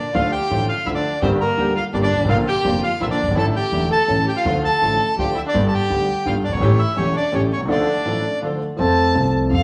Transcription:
Already playing: D4 D5
0.14 D2 D3 F3 A3 D4 F4 F5
0.31 G4 G5
0.50 A1 A2 D3 F3 A3 D4 F4
0.68 F4 F5
0.86 D2 D3 F3 A3 D4 E4 F4 E5
0.95 D4 D5
1.22 G1 G2 D3 G3 A#3 C4 D4 G4 C5
1.39 A#3 A#4
1.57 D2 D3 G3 A#3 D4 G4
1.75 F4 F5
1.92 G1 G2 D3 G3 A#3 D4 G4 D5
2.02 D4 D5
2.16 G1
2.20 G#1
2.24 A1
2.28 A#1 A#2 D3 F3 A#3 D4 F4 F5
2.47 G4 G5
2.64 F1 F2 D3 F3 A#3 D4 F4
2.82 F4 F5
3.00 A#1 A#2 D3 F3 A#3 D4 E4 F4 E5
3.10 D4 D5
3.23 F#1
3.27 G1 G#1
3.32 G#1 A1 A2 D3 E3 A3 E4
3.36 A1 A3 D4 E4 A4 A5
3.55 G4 G5
3.72 E1 E2 D3 E3 A3 D4 E4
3.90 A4 A5
4.08 A1 A2 C#3 E3 A3 C#4 E4
4.26 G4 G5
4.35 F4 F5
4.45 D2 D3 F3 A3 D4 F4
4.63 A4 A5
4.82 A1 A2 D3 F3 A3 D4 F4
5.18 D2 D3 F3 A3 D4 F4 G4 G5
5.35 E4 E5
5.45 D4 D5
5.54 G1 G2 D3 G3 B3 D4 G4
5.64 A4 A5
5.71 G4 G5
5.90 D2 D3 G3 B3 D4 G4
6.25 G1 G2 D3 G3 B3 D4 F4 G4 F5
6.44 D4 D5
6.48 F#1
6.52 G1 C#4 C#5
6.57 G#1 A1 E3 A3
6.61 A1 A2 A3 C#4 G4
6.79 E4 E5
6.96 E1 E2 E3 A3 C#4 G4 C#5
7.16 D4 D5
7.32 A1 A2 E3 A3 C#4 G4 C#5
7.52 B1 C#4 C#5
7.60 C2
7.65 C#2 D2 D3 F3 A3 D4 F4 A4
7.70 D4 D5
8.05 A1 A2 F3 A3 D4 F4 A4
8.42 D2 D3 F3 A3 D4 F4 A4
8.76 F2 F3 A3 C4 A5
8.81 A4
9.12 C2 C3 F3 A3 C4
9.17 A4
9.48 F2 F3 A3 C4 F5
9.53 A4

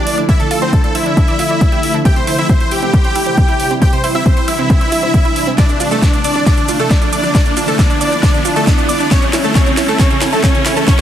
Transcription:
Already playing: D3 F3 A3 D4 E4 D5, riser
0.07 open hi-hat
0.18 D4, closed hi-hat
0.29 D4 E4 E5 E6, kick, closed hi-hat
0.40 D3 A4 A5, closed hi-hat
0.51 F4 A4 A5, open hi-hat
0.62 C4 D4 C5 C6, closed hi-hat
0.73 D4 A4 A5, kick, closed hi-hat
0.84 A4 D5 A5, closed hi-hat
0.95 E4 E5 E6, open hi-hat
1.06 D4, closed hi-hat
1.17 D4, kick, closed hi-hat
1.28 D5, closed hi-hat
1.39 F4, open hi-hat
1.50 D5, closed hi-hat
1.61 D4, kick, closed hi-hat
1.72 G4, closed hi-hat
1.83 open hi-hat
1.94 D4, closed hi-hat
2.05 C3 E3 G3 C4 E4 G4 G5 G6, kick, closed hi-hat
2.16 C3 C5 C6, closed hi-hat
2.27 E4 C5 C6, open hi-hat
2.38 C4 E4 E5 E6, closed hi-hat
2.49 C4 C5 C6, kick, closed hi-hat
2.60 C5 C6, closed hi-hat
2.71 G4 G5 G6, open hi-hat
2.82 C4, closed hi-hat
2.93 C4, kick, closed hi-hat
3.05 C5, closed hi-hat
3.15 E4, open hi-hat
3.26 C5, closed hi-hat
3.37 C4, kick, closed hi-hat
3.49 E4, closed hi-hat
3.60 open hi-hat
3.71 C4, closed hi-hat
3.82 C4 D4 G4 G5 G6, kick, closed hi-hat
3.93 C3 C5 C6, closed hi-hat
4.04 E4 C5 C6, open hi-hat
4.15 C4 E4 E5 E6, closed hi-hat
4.26 C4 C5 C6, kick, closed hi-hat
4.37 C5 C6, closed hi-hat
4.48 E4 E5 E6, open hi-hat
4.59 C4, closed hi-hat
4.70 C4, kick, closed hi-hat
4.81 C5, closed hi-hat
4.92 E4, open hi-hat
5.03 C5, closed hi-hat
5.14 C4, kick, closed hi-hat
5.25 E4, closed hi-hat
5.36 open hi-hat
5.47 C4, closed hi-hat
5.58 D3 F3 A3 D4 E4 D5 D6, kick, snare, closed hi-hat, shaker
5.69 D3 D4 D5, closed hi-hat, shaker
5.80 D4 F4 D5, open hi-hat, shaker
5.91 A3 D4 A4 A5, closed hi-hat, shaker
6.02 D4 D5, kick, snare, closed hi-hat, shaker
6.13 D4 D5, closed hi-hat, shaker
6.24 D4 D5 D6, open hi-hat, shaker
6.35 D4, closed hi-hat, shaker
6.46 D4 D5 D6, kick, snare, closed hi-hat, shaker
6.57 D3 D4 D5, closed hi-hat, shaker
6.68 D4 F4 D5, open hi-hat, shaker
6.80 A3 D4 A4 A5, closed hi-hat, shaker
6.90 D4 D5, kick, snare, closed hi-hat, shaker
7.02 D4 D5, closed hi-hat, shaker
7.13 D4 D5 D6, open hi-hat, shaker
7.24 D4, closed hi-hat, shaker
7.34 G3 D4 D5 D6, kick, snare, closed hi-hat, shaker
7.46 D3 D4 D5, closed hi-hat, shaker
7.57 D4 F4 D5, open hi-hat, shaker
7.68 A3 D4 A4 A5, closed hi-hat, shaker
7.79 D4 D5, kick, snare, closed hi-hat, shaker
7.90 D4 D5, closed hi-hat, shaker
8.01 D4 D5 D6, open hi-hat, shaker
8.12 D4, closed hi-hat, shaker
8.23 D4 D5 D6, kick, snare, closed hi-hat, shaker
8.34 D3 D4 D5, closed hi-hat, shaker
8.45 D4 F4 D5, open hi-hat, shaker
8.56 A3 D4 A4 A5, closed hi-hat, shaker
8.67 D4 D5, kick, snare, closed hi-hat, shaker
8.78 D4 D5, closed hi-hat, shaker
8.89 D4 D5 D6, open hi-hat, shaker
9.00 D4, closed hi-hat, shaker
9.11 C#3 E3 A3 C#4 C#5 C#6, kick, snare, closed hi-hat, shaker
9.22 C#3 C#4 C#5, closed hi-hat, shaker
9.33 C#4 E4 C#5, snare, open hi-hat, shaker
9.44 A3 C#4 A4 A5, closed hi-hat, shaker
9.55 C#4 C#5 C#6, kick, snare, closed hi-hat, shaker
9.66 C#3 C#4 C#5, closed hi-hat, shaker
9.77 C#4 E4 C#5, snare, open hi-hat, shaker
9.88 A3 C#4 A4 A5, closed hi-hat, shaker
9.99 C#4 C#5 C#6, kick, snare, closed hi-hat, shaker
10.10 C#3 C#4 C#5, closed hi-hat, shaker
10.21 C#4 E4 C#5, snare, open hi-hat, shaker
10.32 A3 C#4 A4 A5, closed hi-hat, shaker
10.43 C#4 C#5 C#6, kick, snare, closed hi-hat, shaker
10.54 C#3 C#4 C#5, closed hi-hat, shaker
10.66 C#4 E4 C#5, snare, open hi-hat, shaker
10.76 A3 C#4 A4 A5, closed hi-hat, shaker
10.87 C#4 C#5 C#6, kick, snare, closed hi-hat, shaker

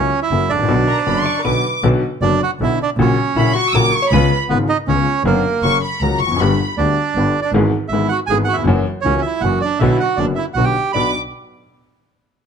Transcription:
Already playing: C#4 C#5
0.22 E4 E5
0.31 F#1 F#2 C#3 F#3 A#3 E4
0.49 G#1 A1 D4 D5
0.58 A1
0.63 A#1
0.68 B1 B2 D3 F#3 B3 F#4
0.88 A#4 A#5
0.99 B4 A#5
1.06 F#1 F#2 D3 F#3 B3 F#4 B5
1.19 C6
1.24 D5 C#6
1.39 A#4
1.44 B1 B2 D3 F#3 B3 F#4 B4 D6
1.83 B1 B2 D3 F#3 B3 F#4
2.21 F#1 F#2 D3 F#3 B3 D4 F#4 D5
2.42 F#4 F#5
2.59 B1 B2 D3 F#3 B3 E4 F#4 E5
2.82 D4 D5
2.96 A#1 A#2 C#3 F#3 A#3 C#4 F#4
3.01 C#5
3.35 A#1 A#2 C#3 F#3 A#3 E4 F#4 B5
3.54 F#4 C#6
3.70 A#1 D6 E6
3.74 A#1 A#2 C#3 F#3 A#3 F#4 A#4
3.93 C#6
4.02 C#5
4.10 C#2 C#3 G#3 B3 B4 B5
4.14 F4
4.49 G#1 G#2 C#3 G#3 B3 F4 B4
4.69 D#4 D#5
4.87 C#2 C#3 G#3 B3 C#4 F4 C#5
5.24 F#1 F#2 D3 F#3 A#3 B3 F#4 A#4
5.62 F#1 F#2 C#3 F#3 A#3 F#4 C#6
5.83 B5
6.00 C#2 C#3 F#3 A#3 F#4 A#5
6.19 F1 C#6
6.26 E2
6.31 F2
6.36 G1 F#2 B5
6.41 G1 G2 D3 G3 B3 G4
6.77 D2 D3 G3 B3 D4 G4 D5
7.15 G1 G2 D3 G3 B3 G4
7.42 D4 D5
7.52 G#1 G#2 E3 G#3 B3 G#4
7.88 G#1 E4 E5
7.92 G#1 G#2 E3 G#3 B3 G#4
8.08 F#4 F#5
8.27 G#1 G#2 G#4 G#5
8.31 G#1 E3 G#3 B3 G#4
8.44 F#4 F#5
8.53 D#2 E4 E5
8.58 E2
8.64 F#1 F2 F#2 E3 A#3 C#4
8.68 F#3 F#4
9.01 C#2 C#3 E3 C#4 C#5
9.06 C#2 A#3 C#4 F#4
9.22 E5
9.26 E4
9.41 F#1 F#2 E3 F#3 A#3 C#4 F#4 F#5
9.45 F#4
9.61 D4 D5
9.79 B1 B2 D3 F#3 B3 F#4 E5
9.83 E4
10.00 F#4 F#5
10.17 F#1 F#2 D3 F#3 B3 D4 F#4 D5
10.35 E4 E5
10.54 B1 B2 D3 F#3 B3 F#4 F#5
10.58 B1 F#4
10.64 G4 G5
10.92 B1 B3 D4 F#4 D5 B5 D6

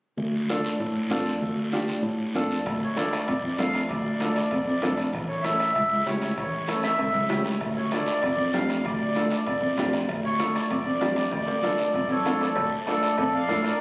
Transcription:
0.17 D2, high conga, long guiro
0.49 D4 F4 A4, high conga, short guiro
0.65 short guiro
0.80 A2, high conga, long guiro
1.10 F2 D4 F4 A4, high conga, short guiro
1.26 short guiro
1.41 D2, high conga, long guiro
1.73 D4 F4 G4, high conga, short guiro
1.88 short guiro
2.03 A2, high conga, long guiro
2.34 F2 D4 F4 A4, high conga, short guiro
2.51 short guiro
2.66 D2, bombo low, bombo rim, high conga, high timbale, long guiro
2.84 C#5
2.96 D4 F4 A4 D5, bombo rim, high conga, high timbale, short guiro
3.13 bombo rim, high timbale, short guiro
3.28 F2 D5, bombo low, bombo rim, high conga, high timbale, long guiro
3.43 F2
3.58 F2 D4 F4 A4 F5, bombo rim, high conga, high timbale, low timbale, short guiro
3.73 bombo rim, high timbale, short guiro
3.89 D2 D5, bombo low, bombo rim, high conga, high timbale, long guiro
4.20 D4 F4 A4, bombo rim, high conga, high timbale, short guiro
4.36 D5, bombo rim, high timbale, short guiro
4.51 F2, bombo low, bombo rim, high conga, high timbale, long guiro
4.67 F2
4.82 F2 D4 F4 A4, bombo low, bombo rim, high conga, high timbale, low timbale, short guiro
4.97 bombo rim, high timbale, short guiro
5.13 A1, bombo low, bombo rim, high conga, high timbale, long guiro
5.29 C#5
5.42 C#4 E4 A4 E5, bombo rim, high conga, high timbale, short guiro
5.60 bombo rim, high timbale, short guiro
5.73 C#2 E5, bombo low, bombo rim, high conga, high timbale, long guiro
5.90 C#2
6.06 C#2 C#4 E4 G4 C#5, bombo rim, high conga, high timbale, low timbale, short guiro
6.22 bombo rim, high timbale, short guiro
6.36 A1 C#5, bombo low, bombo rim, high conga, high timbale, long guiro
6.67 C#4 E4 A4, bombo rim, high conga, high timbale, short guiro
6.83 E5, bombo rim, high timbale, short guiro
6.97 C#2, bombo low, bombo rim, high conga, high timbale, long guiro
7.14 C#2, low timbale
7.29 C#2 C#4 E4 G4, bombo rim, high conga, low timbale, short guiro
7.45 bombo rim, low timbale, short guiro
7.61 D2, bombo low, bombo rim, high conga, high timbale, long guiro
7.77 C#5
7.91 D4 F4 A4 D5, bombo rim, high conga, high timbale, short guiro
8.06 bombo rim, high timbale, short guiro
8.22 F2 D5, bombo low, bombo rim, high conga, high timbale, long guiro
8.37 F2
8.53 F2 D4 F4 G4 F5, bombo rim, high conga, high timbale, low timbale, short guiro
8.69 bombo rim, high timbale, short guiro
8.84 D2 D5, bombo low, bombo rim, high conga, high timbale, long guiro
9.15 D4 F4 A4, bombo rim, high conga, high timbale, short guiro
9.31 D5, bombo rim, high timbale, short guiro
9.46 F2, bombo low, bombo rim, high conga, high timbale, long guiro
9.62 F2
9.78 F2 D4 F4 G4, bombo low, bombo rim, high conga, high timbale, short guiro
9.93 bombo rim, high timbale, short guiro
10.09 D2, bombo low, bombo rim, high conga, high timbale, long guiro
10.25 C#5
10.40 D4 F4 A4, bombo rim, high conga, high timbale, short guiro
10.55 D5, bombo rim, high timbale, short guiro
10.70 F2 D5, bombo low, bombo rim, high conga, high timbale, long guiro
10.87 F2
11.00 F2 D4 F4 G4, bombo rim, high conga, high timbale, low timbale, short guiro
11.16 bombo rim, high timbale, short guiro
11.31 D2, bombo low, bombo rim, high conga, high timbale, long guiro
11.47 high timbale
11.63 D4 F4 A4, bombo rim, high conga, low timbale, short guiro
11.78 bombo rim, short guiro
11.94 F2, bombo low, bombo rim, high conga, low timbale, long guiro
12.10 F2 A4 C#5, low timbale
12.25 F2 D4 F4 A4 F5, bombo rim, high conga, low timbale, short guiro
12.41 A4 D5, bombo rim, low timbale, short guiro
12.56 D2, bombo low, bombo rim, cowbell, high conga, long guiro
12.87 D4 F4 A4 D5, bombo rim, high conga, short guiro
13.03 bombo rim, short guiro
13.18 F2 A4 D5, bombo low, bombo rim, cowbell, high conga, long guiro
13.35 D5 F5
13.48 A2 D4 F4 A4, bombo rim, high conga, low timbale, short guiro
13.64 A#4 D5, bombo rim, short guiro

